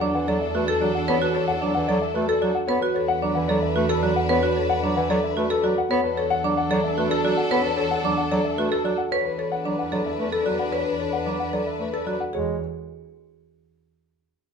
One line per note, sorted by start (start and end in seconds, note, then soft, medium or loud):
0.00 2.54 E2 medium
0.00 0.11 F#3 medium
0.00 2.52 D4 medium
0.00 0.18 D4 medium
0.00 2.52 A4 medium
0.00 0.18 D5 medium
0.14 0.24 E3 medium
0.14 0.32 F#5 medium
0.28 0.38 F#3 medium
0.28 0.45 A4 medium
0.28 0.45 D5 medium
0.41 0.58 E5 medium
0.55 0.65 A3 medium
0.55 0.72 F#4 medium
0.55 0.72 B4 medium
0.68 0.85 A4 medium
0.81 0.92 F#3 medium
0.81 0.99 F#4 medium
0.81 0.99 D5 medium
0.95 1.12 F#5 medium
1.08 1.18 B3 medium
1.08 1.25 B4 medium
1.08 1.25 C#5 medium
1.22 1.39 F#4 medium
1.22 1.39 B4 medium
1.35 1.52 A4 medium
1.35 1.52 C#5 medium
1.48 1.65 F#5 medium
1.61 1.72 F#3 medium
1.61 1.79 D4 medium
1.61 1.79 D5 medium
1.75 1.85 E3 medium
1.75 1.92 F#5 medium
1.88 1.99 F#3 medium
1.88 2.06 A4 medium
1.88 2.06 D5 medium
2.02 2.19 E5 medium
2.14 2.25 A3 medium
2.14 2.33 F#4 medium
2.14 2.32 B4 medium
2.28 2.46 A4 medium
2.41 2.52 F#3 medium
2.41 2.59 F#4 medium
2.41 2.59 D5 medium
2.55 2.72 F#5 medium
2.68 5.76 E2 medium
2.68 2.79 B3 medium
2.68 5.73 D4 medium
2.68 5.73 B4 medium
2.68 2.86 B4 medium
2.68 2.86 C#5 medium
2.81 3.00 F#4 medium
2.81 2.99 B4 medium
2.95 3.13 A4 medium
2.95 3.13 C#5 medium
3.08 3.26 F#5 medium
3.22 3.32 F#3 medium
3.22 3.40 D4 medium
3.22 3.40 D5 medium
3.35 3.46 E3 medium
3.35 3.53 F#5 medium
3.48 3.59 F#3 medium
3.48 3.67 A4 medium
3.48 3.66 D5 medium
3.62 3.80 E5 medium
3.75 3.86 A3 medium
3.75 3.93 F#4 medium
3.75 3.93 B4 medium
3.89 4.06 A4 medium
3.89 4.07 A4 medium
4.02 4.13 F#3 medium
4.02 4.20 F#4 medium
4.02 4.20 D5 medium
4.16 4.33 F#5 medium
4.29 4.39 B3 medium
4.29 4.47 B4 medium
4.29 4.47 C#5 medium
4.43 4.60 F#4 medium
4.43 4.60 B4 medium
4.56 4.74 A4 medium
4.56 4.74 C#5 medium
4.70 4.87 F#5 medium
4.83 4.93 F#3 medium
4.83 5.01 D4 medium
4.83 5.00 D5 medium
4.96 5.06 E3 medium
4.96 5.14 F#5 medium
5.10 5.20 F#3 medium
5.10 5.27 A4 medium
5.10 5.27 D5 medium
5.24 5.41 E5 medium
5.37 5.47 A3 medium
5.37 5.54 F#4 medium
5.37 5.54 B4 medium
5.50 5.67 A4 medium
5.64 5.74 F#3 medium
5.64 5.81 F#4 medium
5.64 5.81 D5 medium
5.78 5.95 F#5 medium
5.90 8.97 E2 medium
5.90 6.00 B3 medium
5.90 8.95 D4 medium
5.90 8.94 A4 medium
5.90 6.08 B4 medium
5.90 6.08 C#5 medium
6.04 6.21 B4 medium
6.17 6.34 A4 medium
6.17 6.34 C#5 medium
6.30 6.48 F#5 medium
6.44 6.54 F#3 medium
6.44 6.61 D4 medium
6.44 6.61 D5 medium
6.57 6.75 F#5 medium
6.70 6.80 F#3 medium
6.70 6.88 A4 medium
6.70 6.88 D5 medium
6.84 7.01 E5 medium
6.97 7.08 A3 medium
6.97 7.15 F#4 medium
6.97 7.15 B4 medium
7.10 7.28 A4 medium
7.24 7.34 F#3 medium
7.24 7.42 F#4 medium
7.24 7.41 D5 medium
7.37 7.55 F#5 medium
7.51 7.61 B3 medium
7.51 7.68 B4 medium
7.51 7.68 C#5 medium
7.64 7.82 B4 medium
7.77 7.95 A4 medium
7.77 7.95 C#5 medium
7.91 8.08 F#5 medium
8.04 8.14 F#3 medium
8.04 8.22 D4 medium
8.04 8.22 D5 medium
8.17 8.35 F#5 medium
8.31 8.41 F#3 medium
8.31 8.49 A4 medium
8.31 8.49 D5 medium
8.45 8.62 E5 medium
8.58 8.68 A3 medium
8.58 8.75 F#4 medium
8.58 8.75 B4 medium
8.71 8.89 A4 medium
8.84 8.94 F#3 medium
8.84 9.02 F#4 medium
8.84 9.02 D5 medium
8.98 9.15 F#5 medium
9.12 12.18 E2 medium
9.12 12.16 D4 medium
9.12 12.16 B4 medium
9.12 9.29 B4 medium
9.12 9.29 C#5 medium
9.25 9.42 B4 medium
9.38 9.56 A4 medium
9.38 9.56 C#5 medium
9.52 9.69 F#5 medium
9.65 9.75 F#3 medium
9.65 9.83 D4 medium
9.65 9.82 D5 medium
9.79 9.96 F#5 medium
9.92 10.02 F#3 medium
9.92 10.09 A4 medium
9.92 10.09 D5 medium
10.06 10.23 E5 medium
10.19 10.29 A3 medium
10.19 10.36 B4 medium
10.32 10.50 A4 medium
10.46 10.56 F#3 medium
10.46 10.63 F#4 medium
10.46 10.63 D5 medium
10.59 10.76 F#5 medium
10.72 10.90 B4 medium
10.72 10.90 C#5 medium
10.86 11.03 B4 medium
10.99 11.17 A4 medium
10.99 11.16 C#5 medium
11.13 11.30 F#5 medium
11.26 11.36 F#3 soft
11.26 11.43 D4 medium
11.26 11.43 D5 soft
11.40 11.57 F#5 medium
11.53 11.63 F#3 medium
11.53 11.70 A4 medium
11.53 11.70 D5 medium
11.67 11.84 E5 soft
11.80 11.90 A3 soft
11.80 11.97 B4 medium
11.93 12.10 A4 medium
12.06 12.16 F#3 soft
12.06 12.24 F#4 medium
12.06 12.24 D5 soft
12.20 12.37 F#5 soft
12.32 12.58 E2 medium
12.32 12.57 G#3 medium
12.32 12.58 G#4 medium
12.32 12.59 C#5 medium